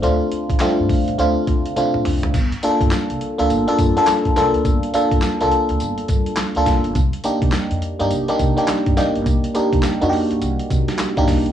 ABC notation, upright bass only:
X:1
M:4/4
L:1/16
Q:"Swing 16ths" 1/4=104
K:Gm
V:1 name="Upright bass" clef=bass
D,, z2 D, z G,, z A,, D,, z D, z2 A,, C,, D,, | G,,, z2 G,, z C,, z D,, G,,, z G,, z2 F,, C,, D,, | G,,, z2 G,, z C,, z D,, G,,, z G,, z2 D,, F,,, G,,, | C,, z2 C, z F,, z G,, C,, z C, z2 G,, F,,, G,,, |
C,, z2 C, z F,, z G,, C,, z C, z2 G,, C,, D,, |]